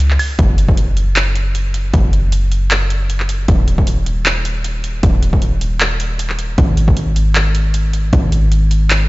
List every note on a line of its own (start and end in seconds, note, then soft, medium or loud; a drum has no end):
0.00 0.18 C#2 medium
0.00 closed hi-hat medium
0.11 clap soft
0.19 open hi-hat medium
0.19 high woodblock medium
0.39 1.92 F#1 medium
0.39 kick loud
0.39 closed hi-hat medium
0.58 closed hi-hat medium
0.69 kick medium
0.77 closed hi-hat medium
0.97 closed hi-hat medium
1.16 clap loud
1.16 closed hi-hat medium
1.36 closed hi-hat medium
1.55 closed hi-hat medium
1.74 closed hi-hat medium
1.94 3.47 F#1 medium
1.94 kick loud
1.94 closed hi-hat medium
2.13 closed hi-hat medium
2.32 closed hi-hat medium
2.52 closed hi-hat medium
2.71 clap loud
2.71 closed hi-hat medium
2.90 closed hi-hat medium
3.10 closed hi-hat medium
3.20 clap soft
3.29 closed hi-hat medium
3.48 5.01 D#1 medium
3.48 kick loud
3.48 closed hi-hat medium
3.68 closed hi-hat medium
3.78 kick medium
3.87 closed hi-hat medium
4.06 closed hi-hat medium
4.26 clap loud
4.26 closed hi-hat medium
4.45 closed hi-hat medium
4.64 closed hi-hat medium
4.84 closed hi-hat medium
5.03 6.56 D#1 medium
5.03 kick loud
5.03 closed hi-hat medium
5.22 closed hi-hat medium
5.33 kick medium
5.42 closed hi-hat medium
5.61 closed hi-hat medium
5.80 clap loud
5.80 closed hi-hat medium
6.00 closed hi-hat medium
6.19 closed hi-hat medium
6.30 clap soft
6.39 closed hi-hat medium
6.58 8.11 G#1 medium
6.58 kick loud
6.58 closed hi-hat medium
6.77 closed hi-hat medium
6.88 kick medium
6.97 closed hi-hat medium
7.16 closed hi-hat medium
7.35 clap loud
7.35 closed hi-hat medium
7.55 closed hi-hat medium
7.74 closed hi-hat medium
7.93 closed hi-hat medium
8.13 9.09 G#1 medium
8.13 kick loud
8.13 closed hi-hat medium
8.32 closed hi-hat medium
8.52 closed hi-hat medium
8.71 closed hi-hat medium
8.90 clap loud
8.90 closed hi-hat medium